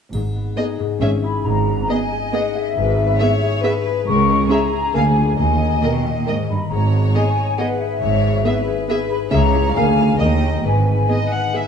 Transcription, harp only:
0.14 G#2
0.36 B3
0.58 D#4 G#4
0.79 G#2
1.01 C#4
1.23 E4 G#4
1.45 G#2
1.68 B3
1.90 D#4
2.12 G#4
2.34 B4
2.56 G#4
2.77 G#2
2.99 B3
3.21 E4
3.43 G#4
3.64 B4
3.86 G#4
4.08 C#3
4.29 C#4
4.51 E4
4.73 G#4
4.94 D3
5.17 F4 A#4
5.39 D#3
5.62 D#4
5.83 A#4
6.06 D#4
6.27 D#5
6.49 A#4
6.71 G#2
6.93 B3
7.16 D#4
7.37 G#4
7.59 B4
7.81 G#4
8.02 G#2
8.24 B3
8.46 E4
8.67 G#4
8.89 B4
9.11 G#4
9.32 C#3
9.54 E4 G#4
9.75 D3
9.98 F4 A#4
10.20 D#3
10.42 D#4 A#4
10.65 G#2
10.87 G#3
11.09 D#4
11.32 B4
11.54 G#4

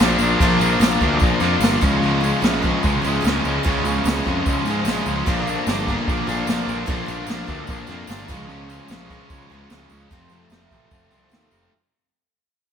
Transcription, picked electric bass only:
0.01 A#1
0.19 A#1
0.40 A#1
0.60 A#1
0.80 A#1
1.01 D2
1.22 A#1
1.41 F2
1.60 G1
1.82 C#2
2.02 C#2
2.42 A#1
2.85 C#2
3.03 C#2
3.24 C#2
3.44 C#2
3.66 C#2
3.83 C#2
4.05 C#2
4.27 F2
4.47 C#2
4.65 G#2
4.85 A#1
5.07 C#2
5.27 A#1
5.67 G1
6.08 A#1
6.28 A#1
6.47 A#1
6.68 A#1
6.89 A#1
7.08 A#1
7.27 A#1
7.48 D2
7.69 A#1
7.89 F2
8.08 G1
8.30 C#2
8.49 C#2
8.90 A#1
9.30 C#2
9.51 C#2
9.71 C#2
9.91 C#2
10.11 F1
10.30 F1
10.51 F1
10.71 A1
10.91 F1
11.11 C2
11.31 D#2
11.52 F1

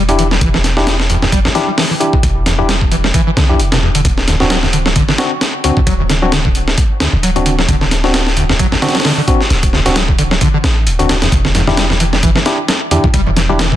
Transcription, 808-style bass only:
Already playing: E1
0.41 E1
1.32 G1
2.23 E1
3.37 B1
3.60 E1
4.05 D1
4.96 F#1
5.87 D1
7.13 D1
7.68 D1
8.59 F#1
9.50 D1
10.64 A1
10.86 D1
11.32 E1
12.23 G1
13.14 E1

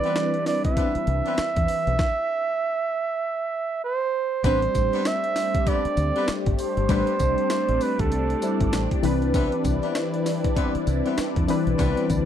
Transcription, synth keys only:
Already playing: E3 C4 D4 B4
4.44 G3 C4 D4 C5
6.89 G3 C4 D4 C5
8.42 G3 C4 D4 E4
9.03 E3 C4 D4 B4
11.48 E3 C4 D4 B4

